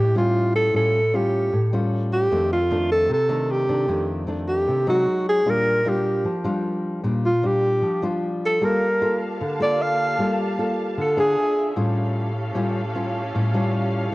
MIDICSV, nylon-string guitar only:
0, 0, Header, 1, 2, 480
1, 0, Start_track
1, 0, Tempo, 393701
1, 902, Time_signature, 4, 2, 24, 8
1, 17249, End_track
2, 0, Start_track
2, 0, Title_t, "Nylon-string guitar"
2, 0, Program_c, 0, 24
2, 0, Note_on_c, 0, 45, 71
2, 186, Note_on_c, 0, 55, 56
2, 193, Note_on_c, 0, 61, 55
2, 194, Note_on_c, 0, 65, 66
2, 866, Note_off_c, 0, 55, 0
2, 868, Note_off_c, 0, 61, 0
2, 870, Note_off_c, 0, 65, 0
2, 878, Note_off_c, 0, 45, 0
2, 896, Note_on_c, 0, 45, 72
2, 900, Note_on_c, 0, 55, 56
2, 906, Note_on_c, 0, 65, 54
2, 907, Note_on_c, 0, 61, 55
2, 1209, Note_off_c, 0, 55, 0
2, 1211, Note_off_c, 0, 61, 0
2, 1214, Note_off_c, 0, 65, 0
2, 1381, Note_on_c, 0, 55, 53
2, 1386, Note_on_c, 0, 61, 52
2, 1390, Note_on_c, 0, 65, 65
2, 1837, Note_off_c, 0, 45, 0
2, 1859, Note_off_c, 0, 55, 0
2, 1862, Note_off_c, 0, 61, 0
2, 1863, Note_off_c, 0, 65, 0
2, 1864, Note_on_c, 0, 45, 65
2, 2109, Note_on_c, 0, 55, 67
2, 2115, Note_on_c, 0, 61, 60
2, 2121, Note_on_c, 0, 65, 66
2, 2788, Note_off_c, 0, 55, 0
2, 2792, Note_off_c, 0, 61, 0
2, 2793, Note_off_c, 0, 65, 0
2, 2800, Note_off_c, 0, 45, 0
2, 2826, Note_on_c, 0, 41, 71
2, 2828, Note_on_c, 0, 51, 58
2, 2831, Note_on_c, 0, 57, 53
2, 2833, Note_on_c, 0, 62, 52
2, 3134, Note_off_c, 0, 51, 0
2, 3137, Note_off_c, 0, 57, 0
2, 3137, Note_off_c, 0, 62, 0
2, 3301, Note_on_c, 0, 51, 53
2, 3308, Note_on_c, 0, 57, 59
2, 3310, Note_on_c, 0, 62, 62
2, 3762, Note_off_c, 0, 41, 0
2, 3772, Note_on_c, 0, 48, 71
2, 3780, Note_off_c, 0, 51, 0
2, 3782, Note_off_c, 0, 57, 0
2, 3784, Note_off_c, 0, 62, 0
2, 4010, Note_on_c, 0, 51, 61
2, 4015, Note_on_c, 0, 62, 73
2, 4018, Note_on_c, 0, 57, 63
2, 4459, Note_off_c, 0, 51, 0
2, 4461, Note_off_c, 0, 62, 0
2, 4463, Note_off_c, 0, 57, 0
2, 4490, Note_on_c, 0, 51, 51
2, 4495, Note_on_c, 0, 57, 57
2, 4504, Note_on_c, 0, 62, 66
2, 4699, Note_off_c, 0, 51, 0
2, 4702, Note_off_c, 0, 57, 0
2, 4704, Note_off_c, 0, 62, 0
2, 4715, Note_off_c, 0, 48, 0
2, 4730, Note_on_c, 0, 41, 67
2, 4735, Note_on_c, 0, 51, 54
2, 4741, Note_on_c, 0, 57, 50
2, 4749, Note_on_c, 0, 62, 57
2, 5180, Note_off_c, 0, 51, 0
2, 5186, Note_off_c, 0, 57, 0
2, 5187, Note_off_c, 0, 62, 0
2, 5204, Note_on_c, 0, 51, 49
2, 5215, Note_on_c, 0, 57, 55
2, 5221, Note_on_c, 0, 62, 56
2, 5675, Note_off_c, 0, 41, 0
2, 5706, Note_on_c, 0, 48, 73
2, 5899, Note_off_c, 0, 51, 0
2, 5901, Note_off_c, 0, 57, 0
2, 5901, Note_off_c, 0, 62, 0
2, 5937, Note_on_c, 0, 54, 67
2, 5944, Note_on_c, 0, 56, 68
2, 5950, Note_on_c, 0, 63, 74
2, 6162, Note_off_c, 0, 48, 0
2, 6624, Note_off_c, 0, 54, 0
2, 6627, Note_off_c, 0, 56, 0
2, 6630, Note_off_c, 0, 63, 0
2, 6652, Note_on_c, 0, 55, 51
2, 6657, Note_on_c, 0, 46, 69
2, 6662, Note_on_c, 0, 62, 61
2, 6667, Note_on_c, 0, 65, 55
2, 7102, Note_off_c, 0, 55, 0
2, 7106, Note_off_c, 0, 62, 0
2, 7109, Note_off_c, 0, 65, 0
2, 7136, Note_on_c, 0, 55, 59
2, 7142, Note_on_c, 0, 62, 53
2, 7148, Note_on_c, 0, 65, 61
2, 7600, Note_off_c, 0, 46, 0
2, 7614, Note_on_c, 0, 53, 69
2, 7619, Note_off_c, 0, 55, 0
2, 7622, Note_off_c, 0, 62, 0
2, 7625, Note_off_c, 0, 65, 0
2, 7855, Note_on_c, 0, 62, 63
2, 7856, Note_on_c, 0, 55, 60
2, 7866, Note_on_c, 0, 65, 73
2, 8543, Note_off_c, 0, 62, 0
2, 8545, Note_off_c, 0, 55, 0
2, 8550, Note_off_c, 0, 65, 0
2, 8558, Note_off_c, 0, 53, 0
2, 8578, Note_on_c, 0, 46, 72
2, 8582, Note_on_c, 0, 55, 55
2, 8587, Note_on_c, 0, 62, 58
2, 8590, Note_on_c, 0, 65, 57
2, 8895, Note_off_c, 0, 55, 0
2, 8898, Note_off_c, 0, 62, 0
2, 8898, Note_off_c, 0, 65, 0
2, 9059, Note_on_c, 0, 55, 55
2, 9067, Note_on_c, 0, 65, 61
2, 9069, Note_on_c, 0, 62, 50
2, 9521, Note_off_c, 0, 46, 0
2, 9532, Note_on_c, 0, 53, 71
2, 9747, Note_off_c, 0, 55, 0
2, 9749, Note_off_c, 0, 62, 0
2, 9750, Note_off_c, 0, 65, 0
2, 9781, Note_on_c, 0, 55, 59
2, 9790, Note_on_c, 0, 62, 53
2, 9794, Note_on_c, 0, 65, 73
2, 10469, Note_off_c, 0, 55, 0
2, 10471, Note_off_c, 0, 62, 0
2, 10474, Note_off_c, 0, 65, 0
2, 10478, Note_off_c, 0, 53, 0
2, 10503, Note_on_c, 0, 55, 65
2, 10510, Note_on_c, 0, 58, 56
2, 10514, Note_on_c, 0, 65, 57
2, 10522, Note_on_c, 0, 69, 63
2, 10818, Note_off_c, 0, 58, 0
2, 10822, Note_off_c, 0, 65, 0
2, 10824, Note_off_c, 0, 69, 0
2, 10993, Note_on_c, 0, 58, 49
2, 10994, Note_on_c, 0, 65, 51
2, 10997, Note_on_c, 0, 69, 66
2, 11443, Note_off_c, 0, 55, 0
2, 11468, Note_off_c, 0, 65, 0
2, 11469, Note_off_c, 0, 58, 0
2, 11471, Note_off_c, 0, 69, 0
2, 11473, Note_on_c, 0, 50, 75
2, 11699, Note_on_c, 0, 58, 62
2, 11706, Note_on_c, 0, 65, 61
2, 11712, Note_on_c, 0, 69, 69
2, 12387, Note_off_c, 0, 58, 0
2, 12389, Note_off_c, 0, 65, 0
2, 12393, Note_off_c, 0, 69, 0
2, 12408, Note_off_c, 0, 50, 0
2, 12419, Note_on_c, 0, 55, 74
2, 12428, Note_on_c, 0, 58, 63
2, 12431, Note_on_c, 0, 65, 57
2, 12439, Note_on_c, 0, 69, 67
2, 12870, Note_off_c, 0, 58, 0
2, 12872, Note_off_c, 0, 65, 0
2, 12877, Note_off_c, 0, 69, 0
2, 12903, Note_on_c, 0, 58, 49
2, 12910, Note_on_c, 0, 65, 54
2, 12914, Note_on_c, 0, 69, 64
2, 13362, Note_off_c, 0, 55, 0
2, 13381, Note_on_c, 0, 50, 67
2, 13588, Note_off_c, 0, 58, 0
2, 13592, Note_off_c, 0, 65, 0
2, 13592, Note_off_c, 0, 69, 0
2, 13617, Note_on_c, 0, 62, 63
2, 13621, Note_on_c, 0, 65, 64
2, 13629, Note_on_c, 0, 68, 75
2, 13841, Note_off_c, 0, 50, 0
2, 14305, Note_off_c, 0, 62, 0
2, 14307, Note_off_c, 0, 65, 0
2, 14309, Note_off_c, 0, 68, 0
2, 14338, Note_on_c, 0, 45, 65
2, 14342, Note_on_c, 0, 55, 60
2, 14346, Note_on_c, 0, 61, 60
2, 14349, Note_on_c, 0, 65, 62
2, 14989, Note_off_c, 0, 55, 0
2, 14992, Note_off_c, 0, 61, 0
2, 14993, Note_off_c, 0, 65, 0
2, 15279, Note_off_c, 0, 45, 0
2, 15294, Note_on_c, 0, 45, 70
2, 15300, Note_on_c, 0, 55, 60
2, 15306, Note_on_c, 0, 61, 64
2, 15311, Note_on_c, 0, 65, 68
2, 15613, Note_off_c, 0, 55, 0
2, 15616, Note_off_c, 0, 61, 0
2, 15618, Note_off_c, 0, 65, 0
2, 15784, Note_on_c, 0, 55, 48
2, 15792, Note_on_c, 0, 61, 56
2, 15801, Note_on_c, 0, 65, 62
2, 16094, Note_off_c, 0, 55, 0
2, 16099, Note_off_c, 0, 61, 0
2, 16101, Note_off_c, 0, 65, 0
2, 16236, Note_off_c, 0, 45, 0
2, 16271, Note_on_c, 0, 45, 68
2, 16279, Note_on_c, 0, 55, 55
2, 16285, Note_on_c, 0, 61, 57
2, 16285, Note_on_c, 0, 65, 63
2, 16472, Note_off_c, 0, 55, 0
2, 16473, Note_off_c, 0, 61, 0
2, 16477, Note_off_c, 0, 65, 0
2, 16507, Note_on_c, 0, 55, 68
2, 16513, Note_on_c, 0, 61, 60
2, 16516, Note_on_c, 0, 65, 65
2, 17187, Note_off_c, 0, 55, 0
2, 17189, Note_off_c, 0, 61, 0
2, 17192, Note_off_c, 0, 65, 0
2, 17205, Note_off_c, 0, 45, 0
2, 17249, End_track
0, 0, End_of_file